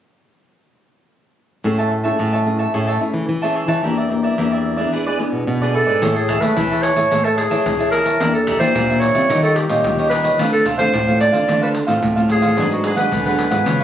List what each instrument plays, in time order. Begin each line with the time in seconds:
1.64 nylon-string guitar A2 A3 C#4 E4 G#4, cavaquinho G#4 C#5 E5 A5
1.78 cavaquinho C#5 E5 A5
1.91 muted cavaquinho stroke
2.04 nylon-string guitar C#4 E4 G#4, cavaquinho C#5 E5 A5
2.19 nylon-string guitar A2 E3, cavaquinho G#4 C#5 E5 A5
2.33 cavaquinho C#5 E5 A5
2.46 nylon-string guitar C#4 E4 G#4
2.59 cavaquinho C#5 E5 A5
2.74 nylon-string guitar A2 A3 C#4 E4 G#4, cavaquinho G#4 C#5 E5 A5
2.87 cavaquinho C#5 E5 A5
3.01 nylon-string guitar C#4 E4 G#4, muted cavaquinho stroke
3.14 nylon-string guitar E3
3.29 nylon-string guitar E3
3.42 nylon-string guitar C#4 E4 G#4, cavaquinho C#5 E5 A5
3.54 cavaquinho G#4 C#5 E5 A5
3.68 nylon-string guitar E3, cavaquinho C#5 E5 A5
3.83 nylon-string guitar E2 E3 A#3 D4 G4, cavaquinho G4 A#4 D5 E5
3.97 cavaquinho A#4 D5 E5
4.10 nylon-string guitar A#3 D4 G4, muted cavaquinho stroke
4.23 cavaquinho A#4 D5 E5
4.38 nylon-string guitar E2 E3 A#3 D4 G4, cavaquinho G4 A#4 D5 E5
4.52 cavaquinho A#4 D5 E5
4.77 nylon-string guitar B3 D4 G#4, cavaquinho A#4 D5 E5
4.92 nylon-string guitar E2 E3, cavaquinho E4 G#4 B4 D5
5.06 cavaquinho G#4 B4 D5
5.19 nylon-string guitar B3 D4 G#4, muted cavaquinho stroke
5.32 nylon-string guitar B2
5.47 nylon-string guitar B2
5.62 nylon-string guitar B3 D4 G#4, cavaquinho G#4 B4 D5
5.74 cavaquinho E4 G#4 B4 D5, clarinet A4
5.87 nylon-string guitar G#2, cavaquinho G#4 B4 D5
6.02 nylon-string guitar A2 A3 E4 G#4 C#5, cavaquinho G#4 C#5 E5 A5, pandeiro, shaker, surdo
6.15 clarinet G#4, muted cavaquinho stroke, pandeiro, shaker
6.28 cavaquinho G#4 C#5 E5 A5, pandeiro, shaker, surdo
6.41 nylon-string guitar A3 E4 G#4 C#5, clarinet B4, cavaquinho C#5 E5 A5, pandeiro, shaker
6.57 nylon-string guitar E3, cavaquinho G#4 C#5 E5 A5, pandeiro, shaker, surdo
6.71 nylon-string guitar E4 G#4 C#5, cavaquinho C#5 E5 A5, pandeiro, shaker
6.83 clarinet C#5, pandeiro, shaker
6.96 nylon-string guitar A2 E4 G#4 C#5, cavaquinho C#5 E5 A5, pandeiro, shaker
7.10 nylon-string guitar A2 A3 E4 G#4 C#5, cavaquinho G#4 C#5 E5 A5, pandeiro, shaker, surdo
7.24 clarinet A4, cavaquinho C#5 E5 A5, pandeiro, shaker
7.37 clarinet G#4, muted cavaquinho stroke, pandeiro, shaker
7.50 nylon-string guitar E3 E4 G#4 C#5, cavaquinho C#5 E5 A5, pandeiro, shaker
7.66 nylon-string guitar E3, pandeiro, shaker, surdo
7.79 nylon-string guitar E4 G#4 C#5, cavaquinho C#5 E5 A5, pandeiro, shaker
7.91 cavaquinho G#4 C#5 E5 A5, clarinet A#4, pandeiro, shaker
8.05 cavaquinho C#5 E5 A5, pandeiro, shaker
8.20 nylon-string guitar E2 E3 A#3 D4 G4, cavaquinho G4 A#4 D5 E5, pandeiro, shaker, surdo
8.34 clarinet A4, muted cavaquinho stroke, pandeiro, shaker
8.47 cavaquinho G4 A#4 D5 E5, pandeiro, surdo
8.59 nylon-string guitar E3 A#3 D4 G4, cavaquinho A#4 D5 E5, clarinet C5, pandeiro, shaker
8.74 nylon-string guitar A#2 E3, cavaquinho G4 A#4 D5 E5, pandeiro, shaker, surdo
8.89 nylon-string guitar A#3 D4 G4, cavaquinho A#4 D5 E5, pandeiro, shaker
9.00 clarinet C#5, pandeiro
9.14 nylon-string guitar C3 G3 C#4 F4, cavaquinho A#4 D5 E5, pandeiro, shaker
9.30 nylon-string guitar D#3, cavaquinho D#4 G4 C#5 D#5, pandeiro, shaker, surdo
9.42 cavaquinho G4 C#5 D#5, clarinet A4, pandeiro, shaker
9.56 clarinet G4, muted cavaquinho stroke, pandeiro, shaker
9.69 nylon-string guitar A#2 G3 C#4 F4, cavaquinho G4 C#5 D#5, pandeiro, shaker
9.84 nylon-string guitar A#2 D#3, pandeiro, shaker, surdo
9.98 nylon-string guitar G3 C#4 F4, cavaquinho G4 C#5 D#5, pandeiro, shaker
10.10 cavaquinho D#4 G4 C#5 D#5, clarinet B4, pandeiro, shaker
10.24 cavaquinho G4 C#5 D#5, pandeiro, shaker
10.39 nylon-string guitar D3 A3 C4 F4, cavaquinho D4 A4 C5 F5, pandeiro, shaker, surdo
10.53 clarinet A4, muted cavaquinho stroke, pandeiro, shaker
10.65 cavaquinho D4 A4 C5 F5, pandeiro, shaker, surdo
10.78 nylon-string guitar D3 A3 C4 F4, cavaquinho A4 C5 F5, clarinet C5, pandeiro, shaker
10.93 nylon-string guitar A2, cavaquinho D4 A4 C5 F5, pandeiro, shaker, surdo
11.07 nylon-string guitar A3 C4 F4, cavaquinho A4 C5 F5, pandeiro, shaker
11.21 clarinet D5, pandeiro, shaker
11.32 nylon-string guitar D3 A3 C4 F4, cavaquinho A4 C5 F5, pandeiro, shaker
11.47 nylon-string guitar D3 A3 C4 F4, cavaquinho D4 A4 C5 F5, pandeiro, shaker, surdo
11.61 cavaquinho A4 C5 F5, clarinet B4, pandeiro, shaker
11.74 muted cavaquinho stroke, pandeiro
11.87 nylon-string guitar A2 A3 C4 F4, cavaquinho A4 C5 F5, pandeiro, shaker
12.02 nylon-string guitar A2, pandeiro, shaker, surdo
12.16 nylon-string guitar A3 C4 F4, cavaquinho A4 C5 F5, pandeiro, shaker
12.29 cavaquinho D4 A4 C5 F5, clarinet G#4, pandeiro
12.42 cavaquinho A4 C5 F5, pandeiro, shaker
12.56 nylon-string guitar G#2 F#3 B3 D4, cavaquinho D4 G#4 B4 F#5, pandeiro, shaker, surdo
12.71 clarinet F#4, muted cavaquinho stroke, pandeiro, shaker
12.84 cavaquinho D4 G#4 B4 F#5, clarinet G#4, pandeiro, shaker
12.96 nylon-string guitar F#3 G#3 B3 D4, cavaquinho G#4 B4 F#5, clarinet B4, pandeiro, shaker
13.11 nylon-string guitar G#2 D3, cavaquinho D4 G#4 B4 F#5, pandeiro, shaker, surdo
13.25 nylon-string guitar F#3 B3 D4, cavaquinho G#4 B4 F#5, clarinet B4, pandeiro, shaker
13.38 clarinet B4, pandeiro, shaker
13.51 nylon-string guitar G#2 G#3 B3 F4, cavaquinho G#4 B4 F#5, pandeiro, shaker
13.66 nylon-string guitar C#3, cavaquinho F4 B4 C#5 F5, pandeiro, shaker, surdo
13.80 cavaquinho F5, pandeiro, shaker